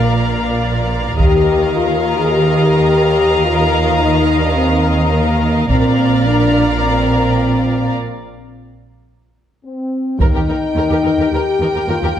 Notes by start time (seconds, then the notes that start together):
Already playing: A#1 A#2 A#3 A#4 D5 F5 A#5
1.17 D#2 D#3 G4 A#4 D#5 F5 A#5, taiko
1.75 F4
2.16 G#4
2.32 G4
3.45 F4
3.99 D#4
4.40 D4
4.55 C4
5.12 A#3
5.69 A#1 A#2 C4 A#4 D5 F5 A#5, taiko
6.25 D4
6.82 C4
9.65 C4
10.20 D#2 D#4 A#4 G5, taiko
10.34 D#2 G4 A#4
10.48 D#2 D#4 A#4
10.76 D#2 A#4
10.90 D#2 G4 A#4
11.04 D#2 D#4 A#4
11.18 D#2 G4 A#4
11.32 D#2 G4 A#4
11.60 D#2 D#4 A#4
11.75 D#2 G4 A#4
11.87 D#2 F4 A#4
12.03 D#2 G4 A#4